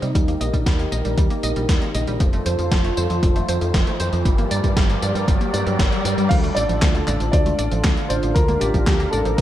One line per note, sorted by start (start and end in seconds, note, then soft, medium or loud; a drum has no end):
0.00 0.11 C3 medium
0.00 0.07 G3 medium
0.00 2.16 D#4 medium
0.00 0.13 G4 medium
0.00 0.13 C5 medium
0.00 closed hi-hat soft
0.00 tambourine soft
0.00 riser medium
0.15 0.33 D#2 loud
0.15 2.18 D#3 medium
0.15 0.27 G3 medium
0.15 2.18 G4 medium
0.15 2.18 A#4 medium
0.15 kick loud
0.15 closed hi-hat medium
0.15 tambourine soft
0.28 0.40 A#3 medium
0.28 closed hi-hat soft
0.28 tambourine soft
0.28 high conga medium
0.41 0.50 A#1 loud
0.41 0.49 D#5 loud
0.41 closed hi-hat medium
0.41 tambourine medium
0.54 0.63 A#1 medium
0.54 0.59 G3 medium
0.54 kick medium
0.54 closed hi-hat soft
0.54 tambourine soft
0.66 0.85 D#2 loud
0.66 0.79 G3 medium
0.66 kick loud
0.66 snare loud
0.66 closed hi-hat medium
0.66 tambourine soft
0.79 0.91 A#3 medium
0.79 closed hi-hat soft
0.79 tambourine soft
0.92 1.01 A#1 loud
0.92 1.00 D#5 loud
0.92 closed hi-hat soft
0.92 tambourine medium
0.92 high conga medium
1.05 1.14 A#1 medium
1.05 1.10 G3 medium
1.05 closed hi-hat soft
1.05 tambourine soft
1.18 1.27 D#2 medium
1.18 1.30 G3 medium
1.18 kick loud
1.18 closed hi-hat medium
1.18 tambourine soft
1.30 1.43 A#3 medium
1.30 closed hi-hat soft
1.30 tambourine soft
1.43 1.52 A#1 medium
1.43 1.52 D#5 loud
1.43 closed hi-hat medium
1.43 tambourine medium
1.43 high conga medium
1.56 1.65 A#1 medium
1.56 1.61 G3 medium
1.56 closed hi-hat soft
1.56 tambourine soft
1.69 1.78 D#2 medium
1.69 1.81 G3 medium
1.69 kick loud
1.69 snare loud
1.69 closed hi-hat medium
1.69 tambourine soft
1.82 1.94 A#3 medium
1.82 closed hi-hat soft
1.82 tambourine soft
1.82 high conga medium
1.95 2.04 A#1 loud
1.95 2.03 D#5 loud
1.95 closed hi-hat medium
1.95 tambourine medium
2.07 2.17 A#1 medium
2.07 2.13 G3 medium
2.07 closed hi-hat soft
2.07 tambourine soft
2.20 2.38 F1 loud
2.20 4.23 F3 medium
2.20 2.33 F3 medium
2.20 4.23 F4 medium
2.20 4.23 A4 medium
2.20 4.23 C5 medium
2.20 kick loud
2.20 closed hi-hat medium
2.20 tambourine soft
2.33 2.45 A3 medium
2.33 closed hi-hat soft
2.33 tambourine soft
2.46 2.55 F2 loud
2.46 2.54 C5 loud
2.46 closed hi-hat medium
2.46 tambourine medium
2.59 2.68 F2 medium
2.59 2.64 F3 medium
2.59 closed hi-hat soft
2.59 tambourine soft
2.71 2.90 F1 loud
2.71 2.84 F3 medium
2.71 kick loud
2.71 snare loud
2.71 closed hi-hat medium
2.71 tambourine soft
2.84 2.97 A3 medium
2.84 closed hi-hat soft
2.84 tambourine soft
2.97 3.06 F2 loud
2.97 3.06 C5 loud
2.97 tambourine medium
2.97 high conga medium
3.10 3.19 F2 medium
3.10 3.15 F3 medium
3.10 closed hi-hat soft
3.10 tambourine soft
3.23 3.41 F1 medium
3.23 3.35 F3 medium
3.23 kick loud
3.23 closed hi-hat medium
3.23 tambourine soft
3.36 3.48 A3 medium
3.36 closed hi-hat soft
3.36 tambourine soft
3.36 high conga medium
3.49 3.58 F2 medium
3.49 3.57 C5 loud
3.49 closed hi-hat medium
3.49 tambourine medium
3.61 3.70 F2 medium
3.61 3.66 F3 medium
3.61 closed hi-hat soft
3.61 tambourine soft
3.74 3.83 F1 medium
3.74 3.86 F3 medium
3.74 kick loud
3.74 snare loud
3.74 closed hi-hat medium
3.74 tambourine soft
3.87 3.99 A3 medium
3.87 closed hi-hat soft
3.87 tambourine soft
4.00 4.09 F2 medium
4.00 4.08 C5 loud
4.00 closed hi-hat medium
4.00 tambourine medium
4.13 4.22 F2 medium
4.13 4.18 F3 medium
4.13 closed hi-hat soft
4.13 tambourine soft
4.25 4.44 G1 loud
4.25 6.28 G3 medium
4.25 4.38 G3 medium
4.25 6.29 G4 medium
4.25 6.29 A#4 medium
4.25 6.29 D5 medium
4.25 kick loud
4.25 closed hi-hat medium
4.25 tambourine soft
4.38 4.50 A#3 medium
4.38 closed hi-hat soft
4.38 tambourine soft
4.38 high conga medium
4.51 4.60 G2 medium
4.51 4.59 D5 loud
4.51 closed hi-hat medium
4.51 tambourine medium
4.64 4.73 G2 medium
4.64 4.69 G3 medium
4.64 kick medium
4.64 closed hi-hat soft
4.64 tambourine soft
4.77 4.95 G1 medium
4.77 4.89 G3 medium
4.77 kick loud
4.77 snare loud
4.77 closed hi-hat medium
4.77 tambourine soft
4.90 5.02 A#3 medium
4.90 closed hi-hat soft
4.90 tambourine soft
5.02 5.11 G2 loud
5.02 5.11 D5 loud
5.02 closed hi-hat soft
5.02 tambourine medium
5.02 high conga medium
5.15 5.24 G2 medium
5.15 5.20 G3 medium
5.15 closed hi-hat soft
5.15 tambourine soft
5.28 5.37 G1 medium
5.28 5.40 G3 medium
5.28 kick loud
5.28 closed hi-hat medium
5.28 tambourine soft
5.41 5.53 A#3 medium
5.41 closed hi-hat soft
5.41 tambourine soft
5.54 5.63 G2 medium
5.54 5.62 D5 loud
5.54 closed hi-hat medium
5.54 tambourine medium
5.54 high conga medium
5.66 5.76 G2 loud
5.66 5.71 G3 medium
5.66 closed hi-hat soft
5.66 tambourine soft
5.79 5.88 G1 loud
5.79 5.91 G3 medium
5.79 kick loud
5.79 snare loud
5.79 closed hi-hat medium
5.79 tambourine soft
5.92 6.04 A#3 medium
5.92 closed hi-hat soft
5.92 tambourine soft
5.92 high conga medium
6.05 6.14 G2 loud
6.05 6.13 D5 loud
6.05 closed hi-hat medium
6.05 tambourine medium
6.18 6.27 G2 medium
6.18 6.23 G3 medium
6.18 closed hi-hat soft
6.18 tambourine soft
6.29 6.49 D2 loud
6.29 9.41 D3 medium
6.29 6.43 F3 medium
6.29 9.41 D4 medium
6.29 9.41 F4 medium
6.29 8.34 A4 medium
6.29 6.35 F5 loud
6.29 kick loud
6.29 closed hi-hat medium
6.29 crash loud
6.29 tambourine soft
6.43 6.55 A3 medium
6.43 closed hi-hat soft
6.43 tambourine soft
6.55 6.65 A1 loud
6.55 7.30 D5 loud
6.55 6.64 D5 loud
6.55 closed hi-hat medium
6.55 tambourine medium
6.69 6.78 A1 medium
6.69 6.74 F3 medium
6.69 closed hi-hat soft
6.69 tambourine soft
6.82 7.00 D2 loud
6.82 6.94 F3 medium
6.82 kick loud
6.82 snare loud
6.82 clap loud
6.82 closed hi-hat loud
6.82 tambourine soft
6.95 7.07 A3 medium
6.95 closed hi-hat soft
6.95 tambourine soft
7.07 7.17 A1 loud
7.07 7.16 D5 loud
7.07 clap medium
7.07 tambourine medium
7.07 high conga medium
7.20 7.29 A1 medium
7.20 7.25 F3 medium
7.20 closed hi-hat soft
7.20 tambourine soft
7.32 7.51 D2 medium
7.32 7.45 F3 medium
7.32 8.12 D5 loud
7.32 kick loud
7.32 closed hi-hat loud
7.32 tambourine soft
7.46 7.58 A3 medium
7.46 closed hi-hat soft
7.46 tambourine soft
7.46 high conga medium
7.59 7.68 A1 medium
7.59 7.67 D5 loud
7.59 closed hi-hat medium
7.59 tambourine medium
7.72 7.81 A1 medium
7.72 7.77 F3 medium
7.72 closed hi-hat soft
7.72 tambourine soft
7.84 7.93 D2 medium
7.84 7.97 F3 medium
7.84 kick loud
7.84 snare loud
7.84 clap medium
7.84 closed hi-hat loud
7.84 tambourine soft
7.97 8.09 A3 medium
7.97 closed hi-hat soft
7.97 tambourine soft
8.09 8.19 A1 medium
8.09 8.36 C5 medium
8.09 8.18 D5 loud
8.09 closed hi-hat medium
8.09 tambourine medium
8.23 8.32 A1 medium
8.23 8.28 F3 medium
8.23 closed hi-hat soft
8.23 tambourine soft
8.35 8.54 D2 loud
8.35 8.48 F3 medium
8.35 8.62 A#4 loud
8.35 9.41 A#4 loud
8.35 kick loud
8.35 closed hi-hat medium
8.35 tambourine soft
8.48 8.61 A#3 medium
8.48 closed hi-hat soft
8.48 tambourine soft
8.48 high conga medium
8.60 8.70 A1 loud
8.60 8.84 G4 medium
8.60 8.70 D5 loud
8.60 closed hi-hat medium
8.60 tambourine medium
8.74 8.83 A1 medium
8.74 8.79 F3 medium
8.74 kick medium
8.74 closed hi-hat soft
8.74 tambourine soft
8.85 9.05 D2 loud
8.85 8.99 F3 medium
8.85 9.10 G4 medium
8.85 kick loud
8.85 snare loud
8.85 clap medium
8.85 closed hi-hat medium
8.85 tambourine soft
9.00 9.12 A#3 medium
9.00 closed hi-hat soft
9.00 tambourine soft
9.11 9.22 A1 loud
9.11 9.36 A4 medium
9.11 9.21 D5 loud
9.11 tambourine medium
9.11 high conga medium
9.25 9.34 A1 medium
9.25 9.30 F3 medium
9.25 closed hi-hat soft
9.25 tambourine soft
9.37 9.41 D2 medium
9.37 9.41 F3 medium
9.37 9.41 A#4 medium
9.37 kick loud
9.37 closed hi-hat medium
9.37 tambourine soft